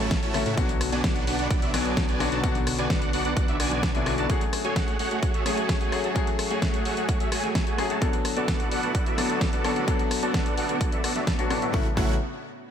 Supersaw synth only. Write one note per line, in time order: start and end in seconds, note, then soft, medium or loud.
0.00 0.20 A3 medium
0.00 0.20 E4 medium
0.00 0.20 F#4 medium
0.00 0.20 C#5 medium
0.00 0.20 A5 medium
0.23 0.43 A3 medium
0.23 0.43 E4 medium
0.23 0.43 F#4 medium
0.23 0.43 C#5 medium
0.23 0.43 A5 medium
0.46 0.55 A3 medium
0.46 0.55 E4 medium
0.46 0.55 F#4 medium
0.46 0.55 C#5 medium
0.46 0.55 F#5 medium
0.57 0.71 B3 medium
0.57 0.71 D4 medium
0.57 0.71 F#4 medium
0.57 0.71 F#5 loud
0.92 1.02 B3 loud
0.92 1.02 D4 medium
0.92 1.02 F#4 medium
0.92 1.02 D5 medium
0.92 1.02 G#5 loud
1.04 1.24 B3 medium
1.04 1.24 D4 medium
1.04 1.24 F#4 medium
1.04 1.24 F#5 loud
1.27 1.37 B3 medium
1.27 1.37 D4 medium
1.27 1.37 F#4 medium
1.27 1.37 D5 medium
1.27 1.37 F#5 medium
1.39 1.48 B3 medium
1.39 1.48 D4 medium
1.39 1.48 F#4 medium
1.39 1.48 D5 medium
1.39 1.48 F#5 loud
1.51 1.60 B3 medium
1.51 1.60 D4 medium
1.51 1.60 F#4 medium
1.51 1.60 D5 medium
1.62 1.71 B3 medium
1.62 1.71 D4 medium
1.62 1.71 F#4 medium
1.62 1.71 D5 medium
1.62 1.71 E5 loud
1.74 2.06 B3 medium
1.74 2.06 D4 medium
1.74 2.06 F#4 medium
1.74 2.06 D5 medium
1.74 2.06 G#5 medium
2.09 2.29 B3 medium
2.09 2.29 D4 medium
2.09 2.29 F#4 medium
2.09 2.29 D5 medium
2.09 2.29 G#5 medium
2.32 2.41 B3 medium
2.32 2.41 D4 medium
2.32 2.41 F#4 medium
2.32 2.41 D5 medium
2.32 2.41 A5 medium
2.44 2.57 B3 medium
2.44 2.57 D4 medium
2.44 2.57 F#4 medium
2.44 2.57 D5 medium
2.44 2.57 F#5 loud
2.78 2.88 B3 loud
2.78 2.88 D4 medium
2.78 2.88 F#4 medium
2.78 2.88 D5 medium
2.78 2.88 G#5 loud
2.90 3.11 B3 medium
2.90 3.11 D4 medium
2.90 3.11 F#4 medium
2.90 3.11 F#5 loud
3.13 3.23 B3 medium
3.13 3.23 D4 medium
3.13 3.23 F#4 medium
3.13 3.23 D5 medium
3.13 3.23 F#5 medium
3.25 3.34 B3 medium
3.25 3.34 D4 medium
3.25 3.34 F#4 medium
3.25 3.34 D5 medium
3.25 3.34 F#5 medium
3.37 3.46 B3 medium
3.37 3.46 D4 medium
3.37 3.46 F#4 medium
3.37 3.46 D5 medium
3.37 3.46 F#5 loud
3.48 3.58 B3 medium
3.48 3.58 D4 medium
3.48 3.58 F#4 medium
3.48 3.58 D5 medium
3.48 3.58 E5 loud
3.60 3.92 B3 medium
3.60 3.92 D4 medium
3.60 3.92 F#4 medium
3.60 3.92 D5 medium
3.60 3.92 G#5 medium
3.95 4.15 B3 medium
3.95 4.15 D4 medium
3.95 4.15 F#4 medium
3.95 4.15 D5 medium
3.95 4.15 G#5 medium
4.18 4.27 B3 medium
4.18 4.27 D4 medium
4.18 4.27 F#4 medium
4.18 4.27 D5 medium
4.18 4.27 A5 medium
4.30 4.44 A3 loud
4.30 4.44 F#4 medium
4.30 4.44 G#4 medium
4.65 4.74 A3 medium
4.65 4.74 F#4 medium
4.65 4.74 G#4 medium
4.65 4.74 C#5 medium
4.65 4.74 G#5 loud
4.76 4.97 A3 medium
4.76 4.97 F#4 medium
4.76 4.97 G#4 medium
4.76 4.97 C#5 medium
4.76 4.97 F#5 loud
4.99 5.09 A3 medium
4.99 5.09 F#4 medium
4.99 5.09 G#4 medium
4.99 5.09 C#5 medium
4.99 5.09 F#5 medium
5.11 5.20 A3 medium
5.11 5.20 F#4 medium
5.11 5.20 G#4 medium
5.11 5.20 C#5 medium
5.11 5.20 F#5 medium
5.23 5.33 A3 medium
5.23 5.33 F#4 medium
5.23 5.33 G#4 medium
5.23 5.33 C#5 medium
5.23 5.33 F#5 loud
5.34 5.44 A3 medium
5.34 5.44 F#4 medium
5.34 5.44 G#4 medium
5.34 5.44 C#5 medium
5.34 5.44 E5 loud
5.46 5.78 A3 medium
5.46 5.78 F#4 medium
5.46 5.78 G#4 medium
5.46 5.78 C#5 medium
5.46 5.78 G#5 medium
5.81 6.01 A3 medium
5.81 6.01 F#4 medium
5.81 6.01 G#4 medium
5.81 6.01 C#5 medium
5.81 6.01 G#5 medium
6.04 6.13 A3 medium
6.04 6.13 F#4 medium
6.04 6.13 G#4 medium
6.04 6.13 C#5 medium
6.04 6.13 A5 medium
6.16 6.30 A3 medium
6.16 6.30 F#4 medium
6.16 6.30 G#4 medium
6.16 6.30 C#5 medium
6.16 6.30 F#5 loud
6.50 6.60 A3 loud
6.50 6.60 F#4 medium
6.50 6.60 G#4 medium
6.50 6.60 C#5 medium
6.50 6.60 G#5 loud
6.62 6.83 A3 medium
6.62 6.83 F#4 medium
6.62 6.83 G#4 medium
6.62 6.83 C#5 medium
6.62 6.83 F#5 loud
6.85 6.95 A3 medium
6.85 6.95 F#4 medium
6.85 6.95 G#4 medium
6.85 6.95 C#5 medium
6.85 6.95 F#5 medium
6.97 7.06 A3 medium
6.97 7.06 F#4 medium
6.97 7.06 G#4 medium
6.97 7.06 C#5 medium
6.97 7.06 F#5 medium
7.09 7.19 A3 medium
7.09 7.19 F#4 medium
7.09 7.19 G#4 medium
7.09 7.19 C#5 medium
7.09 7.19 F#5 loud
7.20 7.30 A3 medium
7.20 7.30 F#4 medium
7.20 7.30 G#4 medium
7.20 7.30 C#5 medium
7.20 7.30 E5 loud
7.32 7.64 A3 medium
7.32 7.64 F#4 medium
7.32 7.64 G#4 medium
7.32 7.64 C#5 medium
7.32 7.64 G#5 medium
7.67 7.87 A3 medium
7.67 7.87 F#4 medium
7.67 7.87 G#4 medium
7.67 7.87 C#5 medium
7.67 7.87 G#5 medium
7.90 7.99 A3 medium
7.90 7.99 F#4 medium
7.90 7.99 G#4 medium
7.90 7.99 C#5 medium
7.90 7.99 A5 medium
8.02 8.16 B3 loud
8.02 8.16 F#4 medium
8.02 8.16 A4 medium
8.02 8.16 D5 medium
8.02 8.16 F#5 loud
8.37 8.46 B3 medium
8.37 8.46 F#4 medium
8.37 8.46 A4 medium
8.37 8.46 D5 medium
8.37 8.46 A5 loud
8.48 8.69 B3 medium
8.48 8.69 F#4 medium
8.48 8.69 A4 medium
8.48 8.69 D5 medium
8.48 8.69 F#5 loud
8.71 8.81 B3 medium
8.71 8.81 F#4 medium
8.71 8.81 A4 medium
8.71 8.81 D5 medium
8.71 8.81 F#5 medium
8.83 8.92 B3 medium
8.83 8.92 F#4 medium
8.83 8.92 A4 medium
8.83 8.92 D5 medium
8.83 8.92 F#5 medium
8.95 9.05 B3 loud
8.95 9.05 F#4 medium
8.95 9.05 A4 medium
8.95 9.05 D5 medium
8.95 9.05 F#5 loud
9.06 9.16 B3 medium
9.06 9.16 F#4 medium
9.06 9.16 A4 medium
9.06 9.16 D5 medium
9.06 9.16 E5 loud
9.18 9.50 B3 medium
9.18 9.50 F#4 medium
9.18 9.50 A4 medium
9.18 9.50 D5 medium
9.18 9.50 A5 medium
9.53 9.73 B3 medium
9.53 9.73 F#4 medium
9.53 9.73 A4 medium
9.53 9.73 D5 medium
9.53 9.73 A5 medium
9.76 9.85 B3 medium
9.76 9.85 F#4 medium
9.76 9.85 A4 medium
9.76 9.85 D5 medium
9.76 9.85 F#5 medium
9.88 10.02 B3 medium
9.88 10.02 F#4 medium
9.88 10.02 A4 medium
9.88 10.02 D5 medium
9.88 10.02 F#5 loud
10.23 10.33 B3 loud
10.23 10.33 F#4 medium
10.23 10.33 A4 medium
10.23 10.33 D5 medium
10.23 10.33 A5 loud
10.34 10.55 B3 medium
10.34 10.55 F#4 medium
10.34 10.55 A4 medium
10.34 10.55 D5 medium
10.34 10.55 F#5 loud
10.57 10.67 B3 medium
10.57 10.67 F#4 medium
10.57 10.67 A4 medium
10.57 10.67 D5 medium
10.57 10.67 F#5 medium
10.69 10.78 B3 medium
10.69 10.78 F#4 medium
10.69 10.78 A4 medium
10.69 10.78 D5 medium
10.69 10.78 F#5 medium
10.81 10.91 B3 loud
10.81 10.91 F#4 medium
10.81 10.91 A4 medium
10.92 11.02 B3 medium
10.92 11.02 F#4 medium
10.92 11.02 A4 medium
10.92 11.02 D5 medium
10.92 11.02 E5 loud
11.04 11.13 B3 medium
11.04 11.13 F#4 medium
11.04 11.13 A4 medium
11.04 11.13 D5 medium
11.04 11.13 F#5 medium
11.16 11.24 B3 medium
11.16 11.24 F#4 medium
11.16 11.24 A4 medium
11.16 11.24 D5 medium
11.16 11.24 E5 medium
11.27 11.48 B3 medium
11.27 11.48 F#4 medium
11.27 11.48 A4 medium
11.27 11.48 D5 medium
11.27 11.48 A5 medium
11.51 11.59 B3 medium
11.51 11.59 F#4 medium
11.51 11.59 A4 medium
11.51 11.59 D5 medium
11.51 11.59 A5 loud
11.62 11.71 B3 medium
11.62 11.71 F#4 medium
11.62 11.71 A4 medium
11.62 11.71 D5 medium
11.62 11.71 E5 medium
11.74 11.87 A3 medium
11.74 11.87 E4 medium
11.74 11.87 F#4 medium
11.74 11.87 C#5 medium
11.74 11.87 F#5 medium
11.97 12.14 A3 medium
11.97 12.14 E4 medium
11.97 12.14 F#4 medium
11.97 12.14 C#5 medium
11.97 12.14 F#5 loud